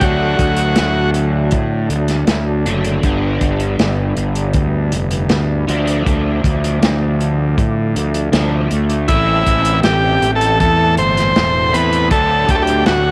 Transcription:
0.00 D2 D3 F#3 A3 D4 F#4 A4 D5 A5, kick, closed hi-hat
0.39 D2, kick, closed hi-hat
0.56 closed hi-hat
0.76 D2, snare, closed hi-hat
1.14 closed hi-hat
1.51 A2, kick, closed hi-hat
1.89 D2, closed hi-hat
2.08 snare, closed hi-hat
2.27 D2, snare, closed hi-hat
2.66 F#1 D3 F#3 A3 D4, closed hi-hat
2.84 closed hi-hat
3.03 G1 G2 D3 G3 B3 D4 G4 B4 B5, kick, closed hi-hat
3.41 G1, kick, closed hi-hat
3.60 closed hi-hat
3.79 G1, snare, closed hi-hat
4.17 G1, closed hi-hat
4.35 closed hi-hat
4.53 D2, kick, closed hi-hat
4.92 F1, closed hi-hat
5.11 closed hi-hat
5.29 D2, snare, closed hi-hat
5.68 D2 D3 F3 A3 D4 A4 F5 D6, closed hi-hat
5.87 closed hi-hat
6.06 D2, kick, closed hi-hat
6.44 D2, kick, closed hi-hat
6.64 closed hi-hat
6.83 D2, snare, closed hi-hat
7.21 closed hi-hat
7.58 A2, kick, closed hi-hat
7.95 D2, closed hi-hat
8.14 closed hi-hat
8.33 D2 D3 F3 A3 D4, snare, closed hi-hat
8.71 D2, closed hi-hat
8.90 closed hi-hat
9.08 A1 A2 E3 A3 C4 E4 E5 G5 A5, kick, closed hi-hat
9.12 E4
9.46 A1, kick, closed hi-hat
9.65 closed hi-hat
9.83 A1 G4, snare, closed hi-hat
10.22 A1, closed hi-hat
10.35 A4
10.41 closed hi-hat
10.60 E2 A4, kick, closed hi-hat
10.97 G1 C5, closed hi-hat
11.17 snare, closed hi-hat
11.36 E1, snare, closed hi-hat
11.73 E2 A2 E3 A3 C4 E4 B4, closed hi-hat
11.93 closed hi-hat
12.10 D2 D3 F#3 A3 D4 A4 D5 D6, kick, closed hi-hat
12.14 F#5
12.49 D2 G4, kick, closed hi-hat
12.55 A4
12.62 G4
12.67 closed hi-hat
12.86 D2 F#4, snare, closed hi-hat

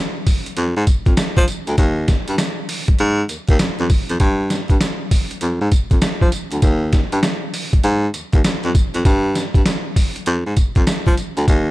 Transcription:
0.27 kick, open hi-hat, tambourine
0.46 closed hi-hat
0.57 F2, closed hi-hat
0.76 G#2
0.87 kick, closed hi-hat, tambourine
1.06 F2, kick, closed hi-hat
1.17 snare, closed hi-hat, tambourine
1.37 F3, kick
1.48 closed hi-hat, tambourine
1.67 D2, closed hi-hat
1.78 D#2, kick, closed hi-hat, tambourine
2.08 kick, snare, closed hi-hat, tambourine
2.28 G2, closed hi-hat
2.38 snare, closed hi-hat, tambourine
2.69 open hi-hat, tambourine
2.88 kick, closed hi-hat
2.99 G#2, closed hi-hat
3.29 D#2, closed hi-hat, tambourine
3.48 D#2, kick, closed hi-hat
3.59 F2, snare, closed hi-hat, tambourine
3.79 F2
3.90 kick, open hi-hat, tambourine
4.09 F2, closed hi-hat
4.20 G2, kick, closed hi-hat, tambourine
4.50 snare, closed hi-hat, tambourine
4.70 G2, kick, closed hi-hat
4.81 snare, closed hi-hat, tambourine
5.11 kick, open hi-hat, tambourine
5.31 closed hi-hat
5.41 F2, closed hi-hat
5.61 G#2
5.72 kick, closed hi-hat, tambourine
5.91 F2, kick, closed hi-hat
6.02 snare, closed hi-hat, tambourine
6.21 F3, kick
6.32 closed hi-hat, tambourine
6.52 D2, closed hi-hat
6.62 D#2, kick, closed hi-hat, tambourine
6.93 kick, snare, closed hi-hat, tambourine
7.12 G2, closed hi-hat
7.23 snare, closed hi-hat, tambourine
7.54 open hi-hat, tambourine
7.73 kick, closed hi-hat
7.83 G#2, closed hi-hat
8.14 D#2, closed hi-hat, tambourine
8.33 D#2, kick, closed hi-hat
8.44 F2, snare, closed hi-hat, tambourine
8.64 F2
8.75 kick, closed hi-hat, tambourine
8.94 F2, closed hi-hat
9.05 G2, kick, closed hi-hat, tambourine
9.35 snare, closed hi-hat, tambourine
9.54 G2, kick, closed hi-hat
9.66 snare, closed hi-hat, tambourine
9.96 kick, open hi-hat, tambourine
10.16 closed hi-hat
10.26 F2, closed hi-hat
10.46 G#2
10.57 kick, closed hi-hat, tambourine
10.76 F2, kick, closed hi-hat
10.87 snare, closed hi-hat, tambourine
11.07 F3, kick
11.17 closed hi-hat, tambourine
11.37 D2, closed hi-hat
11.48 D#2, kick, closed hi-hat, tambourine

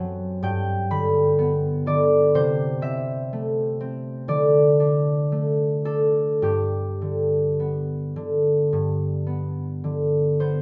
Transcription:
Already playing: F#2 F#3 C4 F#5 A5
0.43 G2 G5
0.90 D3 B5
1.39 B3
1.86 D3 D5
2.35 C3 C5
2.81 C4 E5
3.33 A3
3.81 C4
4.28 D3 D5
4.80 D4
5.32 A3
5.85 D4 A4
6.42 G2 G4
7.02 D3
7.60 B3
8.16 D3
8.73 G2
9.27 B3
9.84 D3
10.40 B3 C5

